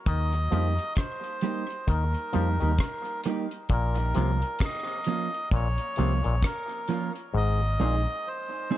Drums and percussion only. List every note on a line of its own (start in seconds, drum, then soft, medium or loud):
0.06 kick loud
0.06 closed hi-hat medium
0.33 closed hi-hat medium
0.52 closed hi-hat medium
0.79 closed hi-hat medium
0.96 kick loud
0.96 cross-stick loud
0.96 closed hi-hat medium
1.24 closed hi-hat soft
1.41 closed hi-hat medium
1.70 closed hi-hat medium
1.88 kick loud
1.88 closed hi-hat medium
2.14 closed hi-hat soft
2.33 closed hi-hat medium
2.60 closed hi-hat soft
2.78 kick loud
2.78 cross-stick loud
2.78 closed hi-hat medium
3.05 closed hi-hat soft
3.24 closed hi-hat medium
3.51 closed hi-hat medium
3.69 kick loud
3.69 closed hi-hat medium
3.96 closed hi-hat medium
4.15 closed hi-hat medium
4.42 closed hi-hat medium
4.59 kick loud
4.59 cross-stick loud
4.59 closed hi-hat medium
4.87 closed hi-hat medium
5.04 closed hi-hat medium
5.34 closed hi-hat medium
5.51 kick loud
5.51 closed hi-hat medium
5.78 closed hi-hat medium
5.96 closed hi-hat medium
6.24 closed hi-hat soft
6.42 kick loud
6.42 cross-stick loud
6.42 closed hi-hat loud
6.69 closed hi-hat soft
6.88 closed hi-hat medium
7.15 closed hi-hat medium